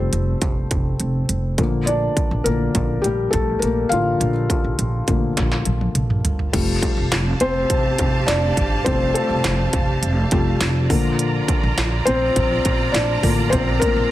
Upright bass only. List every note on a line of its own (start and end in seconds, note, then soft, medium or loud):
0.00 0.10 F1 medium
0.13 0.37 F1 medium
0.42 0.66 F1 medium
0.71 0.95 F1 medium
1.00 1.24 F1 medium
1.29 1.53 F1 medium
1.58 2.06 A#1 medium
2.31 2.43 A#1 medium
2.46 2.70 A#1 medium
2.75 2.99 A#1 medium
3.04 3.28 A#1 medium
3.33 3.57 A#1 medium
3.62 3.86 A#1 medium
3.91 4.15 A1 medium
4.20 4.44 A#1 loud
4.64 4.76 A#1 medium
4.79 5.03 A#1 medium
5.08 5.32 A#1 medium
5.38 5.61 A#1 medium
5.66 5.90 A#1 medium
5.95 6.19 A#1 medium
6.24 6.48 G1 medium
6.54 6.78 F1 loud
6.97 7.09 F1 medium
7.12 7.36 F1 medium
7.41 7.65 F1 medium
7.70 7.94 F1 medium
7.99 8.23 F1 medium
8.28 8.52 F1 medium
8.57 8.81 G1 medium
8.86 9.10 F1 loud
9.30 9.42 F1 medium
9.44 9.68 F1 medium
9.74 9.98 F1 medium
10.02 10.27 F1 medium
10.32 10.56 F1 medium
10.61 10.85 F1 loud
10.90 11.38 A#1 medium
11.63 11.75 A#1 medium
11.77 12.01 A#1 medium
12.07 12.31 A#1 medium
12.36 12.60 A#1 medium
12.65 12.89 A#1 medium
12.94 13.18 A#1 medium
13.23 13.47 A1 loud
13.52 13.76 A#1 loud
13.96 14.08 A#1 medium